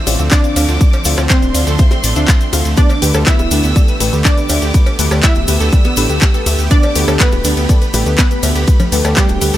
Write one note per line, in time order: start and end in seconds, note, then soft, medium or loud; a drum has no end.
0.00 9.57 D3 medium
0.00 2.73 F3 medium
0.00 9.57 A3 medium
0.00 2.73 C4 medium
0.00 0.22 E4 medium
0.00 0.22 E5 loud
0.00 0.22 E6 loud
0.07 0.17 A1 loud
0.07 0.17 C4 loud
0.07 0.17 F4 medium
0.07 0.18 D5 loud
0.07 snare soft
0.07 closed hi-hat medium
0.07 open hi-hat loud
0.07 ride medium
0.07 high bongo medium
0.07 shaker loud
0.19 0.29 D2 medium
0.19 0.30 C4 medium
0.19 0.30 F4 medium
0.19 0.30 D5 medium
0.19 closed hi-hat soft
0.19 shaker soft
0.31 0.35 C4 medium
0.31 1.20 D4 medium
0.31 1.20 D5 loud
0.31 1.20 D6 loud
0.31 kick loud
0.31 snare loud
0.31 clap loud
0.31 closed hi-hat medium
0.31 open hi-hat medium
0.31 shaker medium
0.44 0.54 C4 medium
0.44 0.54 F4 medium
0.44 0.54 D5 medium
0.44 closed hi-hat soft
0.44 shaker soft
0.56 0.66 D2 loud
0.56 0.67 C4 medium
0.56 0.62 D4 medium
0.56 0.67 F4 medium
0.56 0.67 F5 medium
0.56 closed hi-hat medium
0.56 open hi-hat loud
0.56 ride medium
0.56 cowbell medium
0.56 shaker medium
0.68 0.78 D2 medium
0.68 0.72 F4 medium
0.68 snare soft
0.68 closed hi-hat soft
0.68 shaker soft
0.81 0.92 C4 medium
0.81 0.92 F4 medium
0.81 0.92 D5 medium
0.81 kick loud
0.81 closed hi-hat medium
0.81 shaker medium
0.93 closed hi-hat soft
0.93 cowbell medium
0.93 shaker soft
1.04 1.15 D2 medium
1.04 1.16 C4 loud
1.04 1.16 F4 medium
1.04 1.14 A4 medium
1.04 1.16 D5 loud
1.04 closed hi-hat medium
1.04 open hi-hat loud
1.04 ride medium
1.04 shaker loud
1.18 1.27 D2 medium
1.18 1.28 C4 medium
1.18 1.28 F4 medium
1.18 1.28 C5 loud
1.18 1.24 D5 medium
1.18 cross-stick medium
1.18 snare medium
1.18 closed hi-hat soft
1.18 cowbell loud
1.18 shaker soft
1.30 1.34 C4 medium
1.30 1.52 C4 medium
1.30 2.68 C4 medium
1.30 1.52 F4 medium
1.30 2.68 C5 loud
1.30 1.52 D5 loud
1.30 2.68 C6 loud
1.30 kick loud
1.30 snare loud
1.30 clap loud
1.30 closed hi-hat medium
1.30 shaker medium
1.42 1.52 D1 medium
1.42 1.46 D4 medium
1.42 closed hi-hat soft
1.42 shaker soft
1.54 1.64 D2 medium
1.54 1.76 C4 medium
1.54 1.76 F4 medium
1.54 1.58 F4 medium
1.54 1.76 D5 loud
1.54 closed hi-hat medium
1.54 open hi-hat medium
1.54 ride medium
1.54 shaker medium
1.67 1.77 D2 medium
1.67 1.73 A4 loud
1.67 snare medium
1.67 shaker soft
1.78 1.90 C4 medium
1.78 1.90 F4 medium
1.78 1.85 C5 medium
1.78 1.90 E5 loud
1.78 kick loud
1.78 closed hi-hat medium
1.78 shaker medium
1.91 2.00 C4 loud
1.91 closed hi-hat soft
1.91 high bongo medium
1.91 shaker soft
2.04 2.14 A1 medium
2.04 2.10 D5 medium
2.04 closed hi-hat medium
2.04 open hi-hat loud
2.04 ride medium
2.04 shaker loud
2.16 2.26 D2 medium
2.16 2.26 C4 medium
2.16 2.25 D4 loud
2.16 2.26 F4 medium
2.16 2.26 E5 medium
2.16 closed hi-hat soft
2.16 shaker soft
2.28 2.50 C4 medium
2.28 2.32 C4 loud
2.28 2.50 E5 medium
2.28 kick loud
2.28 snare loud
2.28 clap loud
2.28 closed hi-hat medium
2.28 shaker medium
2.41 2.50 C4 medium
2.41 closed hi-hat soft
2.41 shaker soft
2.53 2.63 D2 loud
2.53 2.64 C4 medium
2.53 2.64 F4 medium
2.53 2.64 F5 medium
2.53 closed hi-hat medium
2.53 open hi-hat loud
2.53 ride medium
2.53 high bongo medium
2.53 shaker medium
2.65 2.75 D2 medium
2.65 closed hi-hat soft
2.65 shaker soft
2.77 2.89 A3 medium
2.77 9.57 B3 medium
2.77 2.81 B3 medium
2.77 3.22 D4 medium
2.77 2.89 G4 medium
2.77 9.57 G4 medium
2.77 2.89 B4 medium
2.77 3.22 D5 loud
2.77 3.22 D6 loud
2.77 kick loud
2.77 closed hi-hat medium
2.77 shaker soft
2.90 2.96 D4 medium
2.90 closed hi-hat soft
2.90 cowbell medium
2.90 shaker soft
3.02 3.12 D2 medium
3.02 3.13 A3 loud
3.02 3.06 G4 loud
3.02 3.13 G4 medium
3.02 3.13 B4 loud
3.02 closed hi-hat medium
3.02 open hi-hat loud
3.02 ride medium
3.02 shaker medium
3.14 3.24 D2 medium
3.14 3.25 A3 medium
3.14 3.25 G4 medium
3.14 3.20 A4 loud
3.14 3.25 A4 loud
3.14 cross-stick medium
3.14 closed hi-hat soft
3.14 cowbell medium
3.14 shaker soft
3.26 3.48 A3 medium
3.26 3.36 B3 medium
3.26 4.15 E4 medium
3.26 3.48 G4 medium
3.26 4.15 E5 loud
3.26 4.15 E6 loud
3.26 kick loud
3.26 snare loud
3.26 clap loud
3.26 closed hi-hat medium
3.26 shaker medium
3.39 3.49 D1 medium
3.39 3.43 B3 medium
3.39 closed hi-hat soft
3.39 high bongo medium
3.39 shaker soft
3.51 3.61 D2 medium
3.51 3.73 A3 medium
3.51 3.60 D4 loud
3.51 3.73 G4 medium
3.51 3.73 B4 loud
3.51 closed hi-hat medium
3.51 open hi-hat medium
3.51 ride medium
3.51 shaker loud
3.64 3.73 D2 medium
3.64 3.70 B3 medium
3.64 closed hi-hat soft
3.64 shaker soft
3.76 3.87 A3 medium
3.76 3.87 G4 medium
3.76 3.80 A4 medium
3.76 3.87 D5 loud
3.76 kick loud
3.76 closed hi-hat medium
3.76 shaker medium
3.88 3.94 B4 medium
3.88 closed hi-hat soft
3.88 shaker soft
4.00 4.10 A1 loud
4.00 4.11 A3 loud
4.00 4.11 G4 medium
4.00 4.11 B4 loud
4.00 snare soft
4.00 closed hi-hat medium
4.00 open hi-hat loud
4.00 ride medium
4.00 high bongo medium
4.00 shaker medium
4.13 4.23 D2 medium
4.13 4.24 A3 medium
4.13 4.24 G4 medium
4.13 4.24 B4 medium
4.13 closed hi-hat soft
4.13 shaker soft
4.25 4.29 B3 medium
4.25 5.14 D4 medium
4.25 5.14 D5 loud
4.25 5.14 D6 loud
4.25 kick loud
4.25 snare loud
4.25 clap loud
4.25 closed hi-hat medium
4.25 open hi-hat medium
4.25 shaker medium
4.37 4.48 A3 medium
4.37 4.48 G4 medium
4.37 4.48 B4 medium
4.37 closed hi-hat soft
4.37 shaker soft
4.49 4.59 D2 loud
4.49 4.61 A3 medium
4.49 4.56 D4 medium
4.49 4.61 G4 medium
4.49 4.61 E5 medium
4.49 closed hi-hat medium
4.49 open hi-hat loud
4.49 ride medium
4.49 cowbell medium
4.49 shaker loud
4.62 4.72 D2 medium
4.62 4.66 G4 medium
4.62 snare soft
4.62 closed hi-hat soft
4.62 shaker soft
4.74 4.85 A3 medium
4.74 4.85 G4 medium
4.74 4.85 B4 medium
4.74 kick loud
4.74 closed hi-hat medium
4.74 shaker medium
4.86 closed hi-hat soft
4.86 cowbell medium
4.86 shaker soft
4.99 5.09 D2 loud
4.99 5.09 A3 loud
4.99 5.09 G4 medium
4.99 5.08 A4 medium
4.99 5.09 B4 loud
4.99 closed hi-hat medium
4.99 open hi-hat loud
4.99 ride medium
4.99 shaker medium
5.11 5.21 D2 medium
5.11 5.22 A3 medium
5.11 5.22 G4 medium
5.11 5.22 A4 loud
5.11 5.17 D5 medium
5.11 cross-stick medium
5.11 snare medium
5.11 closed hi-hat soft
5.11 cowbell medium
5.11 shaker soft
5.23 5.45 A3 medium
5.23 5.27 B3 medium
5.23 6.61 E4 medium
5.23 6.61 E5 loud
5.23 6.61 E6 loud
5.23 kick loud
5.23 snare loud
5.23 clap loud
5.23 closed hi-hat medium
5.23 shaker soft
5.35 5.45 D1 medium
5.35 5.39 D4 medium
5.35 closed hi-hat soft
5.35 shaker soft
5.48 5.58 D2 medium
5.48 5.70 A3 medium
5.48 5.70 G4 medium
5.48 5.52 G4 medium
5.48 5.70 B4 loud
5.48 closed hi-hat medium
5.48 open hi-hat medium
5.48 ride medium
5.48 shaker loud
5.60 5.70 D2 medium
5.60 5.66 A4 loud
5.60 snare medium
5.60 closed hi-hat soft
5.60 shaker soft
5.72 5.84 A3 medium
5.72 5.84 G4 medium
5.72 5.79 B4 medium
5.72 5.84 D5 loud
5.72 kick loud
5.72 closed hi-hat medium
5.72 shaker medium
5.85 5.94 B3 loud
5.85 closed hi-hat soft
5.85 high bongo medium
5.85 shaker soft
5.96 6.07 A1 loud
5.96 6.08 A3 loud
5.96 6.03 D4 medium
5.96 6.08 G4 medium
5.96 6.08 B4 loud
5.96 closed hi-hat medium
5.96 open hi-hat loud
5.96 ride medium
5.96 shaker loud
6.09 6.19 D2 medium
6.09 6.20 A3 medium
6.09 6.20 G4 medium
6.09 6.20 B4 medium
6.09 closed hi-hat soft
6.09 shaker soft
6.22 6.25 G4 medium
6.22 kick loud
6.22 snare loud
6.22 clap loud
6.22 closed hi-hat medium
6.22 shaker soft
6.34 6.44 A3 medium
6.34 6.44 G4 medium
6.34 6.40 A4 loud
6.34 6.44 B4 medium
6.34 closed hi-hat soft
6.34 shaker soft
6.46 6.56 D2 loud
6.46 6.57 A3 medium
6.46 6.57 G4 medium
6.46 6.57 E5 medium
6.46 closed hi-hat medium
6.46 open hi-hat medium
6.46 ride medium
6.46 high bongo medium
6.46 shaker medium
6.59 6.68 D2 medium
6.59 closed hi-hat soft
6.59 shaker soft
6.70 6.82 A3 medium
6.70 6.75 B3 medium
6.70 7.15 D4 medium
6.70 6.82 G4 medium
6.70 6.82 B4 medium
6.70 7.15 D5 loud
6.70 7.15 D6 loud
6.70 kick loud
6.70 closed hi-hat medium
6.70 shaker medium
6.83 6.89 D4 medium
6.83 closed hi-hat soft
6.83 cowbell medium
6.83 shaker soft
6.95 7.05 D2 loud
6.95 7.06 A3 loud
6.95 6.99 G4 loud
6.95 7.06 G4 medium
6.95 7.06 B4 loud
6.95 closed hi-hat medium
6.95 open hi-hat loud
6.95 ride medium
6.95 shaker medium
7.08 7.18 D2 medium
7.08 7.18 A3 medium
7.08 7.18 G4 medium
7.08 7.14 A4 loud
7.08 7.18 A4 loud
7.08 cross-stick medium
7.08 closed hi-hat soft
7.08 cowbell loud
7.08 shaker soft
7.20 7.42 A3 medium
7.20 7.29 B3 medium
7.20 8.09 B3 medium
7.20 8.09 B4 loud
7.20 8.09 B5 loud
7.20 kick loud
7.20 snare loud
7.20 clap loud
7.20 closed hi-hat medium
7.20 shaker medium
7.32 7.42 D1 medium
7.32 7.36 B3 medium
7.32 closed hi-hat soft
7.32 high bongo medium
7.32 shaker soft
7.44 7.55 D2 loud
7.44 7.66 A3 medium
7.44 7.54 D4 loud
7.44 7.66 G4 medium
7.44 7.66 B4 loud
7.44 closed hi-hat medium
7.44 open hi-hat medium
7.44 ride medium
7.44 shaker medium
7.57 7.67 D2 medium
7.57 7.63 B3 medium
7.57 closed hi-hat soft
7.57 shaker soft
7.69 7.80 A3 medium
7.69 7.80 G4 medium
7.69 7.73 A4 medium
7.69 7.80 D5 loud
7.69 kick loud
7.69 closed hi-hat medium
7.69 shaker medium
7.82 7.88 B4 medium
7.82 closed hi-hat soft
7.82 shaker soft
7.94 8.04 A1 medium
7.94 8.04 A3 loud
7.94 8.04 G4 medium
7.94 8.04 B4 loud
7.94 snare soft
7.94 closed hi-hat medium
7.94 open hi-hat loud
7.94 ride medium
7.94 high bongo medium
7.94 shaker medium
8.06 8.16 D2 medium
8.06 8.17 A3 medium
8.06 8.17 G4 medium
8.06 8.17 B4 medium
8.06 closed hi-hat soft
8.06 shaker soft
8.18 8.22 B3 medium
8.18 9.07 B3 medium
8.18 9.07 B4 medium
8.18 9.07 B5 loud
8.18 kick loud
8.18 snare loud
8.18 clap loud
8.18 closed hi-hat medium
8.18 open hi-hat medium
8.18 shaker soft
8.31 8.41 A3 medium
8.31 8.41 G4 medium
8.31 8.41 B4 medium
8.31 closed hi-hat soft
8.31 shaker soft
8.43 8.53 D2 loud
8.43 8.54 A3 medium
8.43 8.49 D4 medium
8.43 8.54 G4 medium
8.43 8.54 E5 medium
8.43 closed hi-hat medium
8.43 open hi-hat medium
8.43 ride medium
8.43 cowbell medium
8.43 shaker medium
8.55 8.65 D2 medium
8.55 8.59 G4 medium
8.55 snare soft
8.55 closed hi-hat soft
8.55 shaker soft
8.68 8.79 A3 medium
8.68 8.79 G4 medium
8.68 8.79 B4 medium
8.68 kick loud
8.68 closed hi-hat medium
8.68 shaker soft
8.80 closed hi-hat soft
8.80 cowbell medium
8.80 high conga loud
8.80 shaker soft
8.92 9.02 D2 loud
8.92 9.03 A3 loud
8.92 9.03 G4 medium
8.92 9.01 A4 medium
8.92 9.03 B4 loud
8.92 closed hi-hat medium
8.92 open hi-hat loud
8.92 ride medium
8.92 shaker medium
9.05 9.14 D2 medium
9.05 9.15 A3 medium
9.05 9.15 G4 medium
9.05 9.15 A4 loud
9.05 9.11 D5 medium
9.05 cross-stick medium
9.05 snare medium
9.05 closed hi-hat soft
9.05 cowbell medium
9.05 shaker soft
9.17 9.57 G3 medium
9.17 9.21 B3 medium
9.17 9.57 G4 loud
9.17 9.57 G5 loud
9.17 kick loud
9.17 snare loud
9.17 clap loud
9.17 closed hi-hat medium
9.17 shaker soft
9.29 9.39 D1 medium
9.29 9.33 D4 medium
9.29 closed hi-hat soft
9.29 high bongo medium
9.29 shaker soft
9.41 9.51 D2 medium
9.41 9.57 A3 medium
9.41 9.57 G4 medium
9.41 9.45 G4 medium
9.41 9.57 B4 loud
9.41 closed hi-hat medium
9.41 open hi-hat medium
9.41 ride medium
9.41 shaker medium
9.54 9.57 D2 medium
9.54 9.57 A4 loud
9.54 snare medium
9.54 closed hi-hat soft
9.54 shaker soft